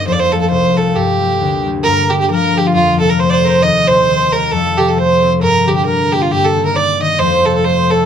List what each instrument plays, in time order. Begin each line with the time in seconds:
Already playing: harp G2 A#3 C4 D#4
0.06 harp F2, fiddle C5
0.12 fiddle D5
0.19 fiddle C5
0.31 harp G3 A3 F4, fiddle A4
0.41 fiddle A4
0.50 harp C2, fiddle C5
0.77 harp G3 A3 F4, fiddle A4
0.95 harp G2, fiddle G4
1.20 harp G3 A3 A#3
1.41 harp D2
1.66 harp G3 A3 A#3
1.84 harp G2, fiddle A#4, accordion A#4
2.10 harp D3, fiddle G4, accordion G4
2.20 fiddle G4, accordion G4
2.30 harp F3, fiddle A#4, accordion A#4
2.56 harp A#3, accordion G4, fiddle G4
2.66 accordion F4, fiddle F4
2.74 harp F2, fiddle F4, accordion F4
3.00 harp C3, fiddle A4, accordion A4
3.10 fiddle A#4, accordion A#4
3.18 harp A3, accordion C5, fiddle C5
3.30 fiddle C5 D5, accordion C5
3.44 harp C4, fiddle A#4 C5, accordion C5
3.63 harp D#2, fiddle D#5, accordion D#5
3.88 harp A#2, fiddle C5, accordion C5
4.08 harp D#3
4.33 harp G3, fiddle A#4, accordion A#4
4.51 harp F2, fiddle A4, accordion A4
4.77 harp C3, fiddle G4, accordion G4
4.88 fiddle A4, accordion A4
4.96 harp A3, accordion C5, fiddle C5
5.22 harp C4
5.41 harp G2, accordion A#4, fiddle A#4
5.66 harp D3, accordion G4, fiddle G4
5.76 accordion G4, fiddle G4
5.86 harp G3, fiddle A#4, accordion A#4
6.12 harp A#3, accordion G4, fiddle G4
6.21 accordion F4, fiddle F4
6.31 harp G2, accordion G4, fiddle G4
6.43 accordion A4, fiddle A4
6.56 harp D#3
6.65 accordion A#4, fiddle A#4
6.74 harp D#4, accordion D5, fiddle D5
7.00 harp D#3, accordion D#5, fiddle D#5
7.19 harp F2, accordion C5, fiddle C5
7.45 harp C3, fiddle A4
7.55 fiddle A4, accordion A4
7.64 harp A3, fiddle C5, accordion C5
7.90 harp C4, fiddle A4, accordion A4